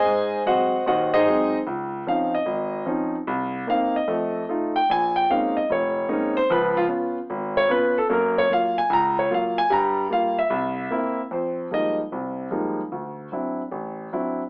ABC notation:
X:1
M:4/4
L:1/16
Q:"Swing" 1/4=149
K:Fm
V:1 name="Grand piano"
[Acea]4 [_Gce_g]4 [Gceg]2 [EAce]4- [EAce] z | z4 f2 e6 z4 | z4 f2 e6 z2 g2 | a2 g2 f2 e2 d6 c2 |
_c2 F2 z6 d2 c2 =A2 | [=AB]2 d2 f2 _a2 b2 d2 f2 a2 | b4 f2 =e8- e z | c4 e2 z8 z2 |
z16 |]
V:2 name="Grand piano"
A,,4 [_G,A,C]2 z2 [E,,E,]4 [G,A,C]2 z2 | D,,4 [F,CDE]2 z2 A,,,4 [F,CDE]2 z2 | C,,4 [B,CE]2 z2 [F,,=A,]4 [A,EF]2 z2 | B,,,4 [A,B,CDE]2 z2 F,,,4 [A,B,CDE]2 z2 |
[D,,F,]4 [_CDF]2 z2 A,,,4 [CDF]2 z2 | [_G,,B,]4 [_G,B,F]2 z2 D,,4 [G,B,F]2 z2 | [G,,G,]4 [G,B,F]2 z2 C,,4 [B,C=E]2 z2 | F,,4 [F,G,A,B,E]2 z2 [C,,C,]4 [F,G,A,B,E]2 z2 |
=D,,4 [^F,C=D=E]2 z2 =A,,,4 [F,CDE]2 z2 |]